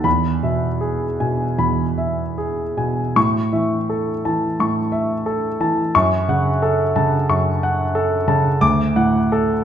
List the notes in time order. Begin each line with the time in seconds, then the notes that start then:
0.04 E2 B5
0.43 B2 E5
0.81 G#4
1.20 B2 G#5
1.58 E2 B5
1.98 E5
2.38 G#4
2.77 B2 G#5
3.16 A2 C#6
3.53 E3 E5
3.90 A4
4.25 E3 A5
4.60 A2 C#6
4.92 E5
5.26 A4
5.60 E3 A5
5.95 F#2 C#6
6.29 C#3 F#5
6.62 A4
6.96 C#3 A5
7.30 F#2 C#6
7.63 F#5
7.95 A4
8.28 C#3 A5
8.61 D2 D6
8.96 A2 F#5
9.32 A4